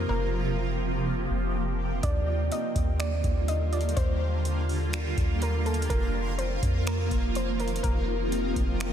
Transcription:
Already playing: ambient pad C3 F3 A#3
0.09 808-style bass F1, ambient pad G4, synth pluck A#4
1.31 808-style bass F1
2.03 808-style bass D#2, ambient pad D3 G3 A#3 F4, synth pluck D5, kick, closed hi-hat
2.52 synth pluck D#5, closed hi-hat
2.75 808-style bass D#2, kick, closed hi-hat
2.99 synth pluck D5, finger snap, closed hi-hat
3.24 808-style bass D#2, kick, closed hi-hat
3.48 synth pluck D#5, closed hi-hat
3.73 synth pluck D5, closed hi-hat
3.81 closed hi-hat
3.89 closed hi-hat
3.96 808-style bass D#2, synth pluck C5, kick, closed hi-hat
4.45 closed hi-hat
4.69 open hi-hat
4.93 finger snap, closed hi-hat
5.17 808-style bass D#2, kick, closed hi-hat
5.42 synth pluck A#4, closed hi-hat
5.66 synth pluck A4, closed hi-hat
5.74 closed hi-hat
5.82 closed hi-hat
5.90 808-style bass F1, ambient pad C3 D#3 F3, synth pluck A#4, kick, closed hi-hat
6.38 synth pluck C5, closed hi-hat
6.63 808-style bass F2, kick, closed hi-hat
6.87 synth pluck A#4, finger snap, closed hi-hat
7.11 808-style bass F1, kick, closed hi-hat
7.35 synth pluck C5, closed hi-hat
7.60 synth pluck A#4, closed hi-hat
7.68 closed hi-hat
7.76 closed hi-hat
7.83 808-style bass F1, ambient pad G4, synth pluck A#4, kick, closed hi-hat
8.32 closed hi-hat
8.56 808-style bass F1, kick, closed hi-hat
8.80 finger snap, closed hi-hat

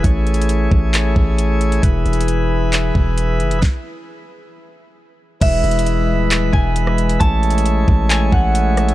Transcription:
Already playing: pipe organ E4 G#4
0.04 808-style bass A1, pipe organ A3 C#5, kick, closed hi-hat
0.27 closed hi-hat
0.34 closed hi-hat
0.42 closed hi-hat
0.49 closed hi-hat
0.72 808-style bass A1, kick
0.94 clap, closed hi-hat
1.16 808-style bass A1, kick
1.39 closed hi-hat
1.61 closed hi-hat
1.72 closed hi-hat
1.83 808-style bass E1, pipe organ E3 B4, kick, closed hi-hat
2.06 808-style bass E1, closed hi-hat
2.13 closed hi-hat
2.21 closed hi-hat
2.28 closed hi-hat
2.73 clap, closed hi-hat
2.95 808-style bass E1, kick
3.18 closed hi-hat
3.40 808-style bass F#1, closed hi-hat
3.51 808-style bass E1, closed hi-hat
3.62 kick, snare
5.41 808-style bass E1, pipe organ E3 G#3 E4 B4, harp E5, kick, closed hi-hat, crash
5.64 808-style bass E1, closed hi-hat
5.71 closed hi-hat
5.79 closed hi-hat
5.86 closed hi-hat
6.09 808-style bass D#1
6.31 clap, closed hi-hat
6.53 808-style bass E1, harp G#5, kick
6.76 closed hi-hat
6.87 cross-stick
6.98 closed hi-hat
7.09 closed hi-hat
7.20 808-style bass A1, pipe organ A3 E4 C#5, harp A5, kick, closed hi-hat
7.43 closed hi-hat
7.50 closed hi-hat
7.58 closed hi-hat
7.66 closed hi-hat
7.88 808-style bass A1, kick
8.09 harp G#5, clap, closed hi-hat
8.32 808-style bass A1, harp F#5, kick
8.55 closed hi-hat
8.77 cross-stick, closed hi-hat
8.89 closed hi-hat

